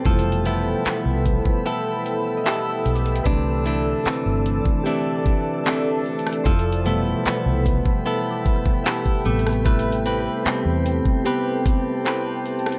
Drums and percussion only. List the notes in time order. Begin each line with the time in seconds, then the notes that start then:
0.06 kick, closed hi-hat
0.19 closed hi-hat
0.32 closed hi-hat
0.46 closed hi-hat
0.85 clap, closed hi-hat
1.26 kick, closed hi-hat
1.46 kick
1.66 closed hi-hat
2.06 closed hi-hat
2.46 clap, closed hi-hat
2.86 closed hi-hat, open hi-hat
2.96 closed hi-hat
3.06 closed hi-hat
3.16 closed hi-hat
3.26 kick, closed hi-hat
3.66 closed hi-hat
4.06 clap, closed hi-hat
4.46 closed hi-hat
4.66 kick
4.86 closed hi-hat
5.26 kick, closed hi-hat
5.66 clap, closed hi-hat
6.06 closed hi-hat
6.19 closed hi-hat
6.27 cross-stick
6.33 closed hi-hat
6.46 kick, closed hi-hat
6.59 closed hi-hat
6.72 closed hi-hat
6.86 closed hi-hat
7.26 clap, closed hi-hat
7.66 kick, closed hi-hat
7.86 kick
8.06 closed hi-hat
8.46 kick, closed hi-hat
8.66 kick
8.86 clap, closed hi-hat
9.06 kick
9.26 closed hi-hat, open hi-hat
9.39 closed hi-hat
9.47 cross-stick
9.52 closed hi-hat
9.66 kick, closed hi-hat
9.79 closed hi-hat
9.92 closed hi-hat
10.06 closed hi-hat
10.46 clap, closed hi-hat
10.86 closed hi-hat
11.05 kick
11.26 closed hi-hat
11.66 kick, closed hi-hat
12.06 clap, closed hi-hat
12.46 closed hi-hat
12.59 closed hi-hat
12.66 cross-stick
12.72 closed hi-hat